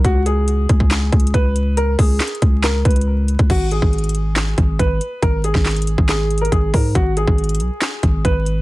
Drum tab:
CC |------------------------------------------------------------------------------------------------|------------------------------------------------------------------------------------------------|x-----------------------------------------------------------------------------------------------|------------------------------------------------------------------------------------------------|
HH |x-----------x-----------x-----------x-----------x-----------x---x---x---x-----------x-----------|x-----------o-----------x---x---x---x-----------x-----------x--x--x--x--------------x-----x-----|x-----------x-----------x--x--x--x--x-----------x-----------x-----------x-----------x-----------|x-----------x-----------x--x--x--x--x-----------x-----------x---x---x---x-----------o-----------|
CP |------------------------------------------------x-----------------------------------------------|------------------------x-----------------------x-----------------------------------------------|------------------------------------------------x-----------------------------------------------|------------------------x-----------------------x-----------------------------------------------|
SD |------------------------------------------------o-----------------------------------------------|------------------------o-----------------------o-----------------------------------------------|------------------------------------------------o-----------------------------------------------|------------------o-----o-----------------------o-----------------------------------------------|
BD |o-----------------------------------o-----o-----------------o-----------o-----------------------|------------o-----------------------o-----------------------o-----------------------------o-----|o-----------------o-----------------------------------------o-----------o-----------------------|o-----------------o-----------------------o-----------------------------o-----------o-----------|

CC |------------------------------------------------------------------------------------------------|
HH |x-----------x-----------x--x--x--x--x-----------x-----------x-----------x-----------x-----------|
CP |------------------------------------------------x-----------------------------------------------|
SD |------------------------------------------------o-----------------------------------------------|
BD |o-----------------o-----------------------------------------o-----------o-----------------------|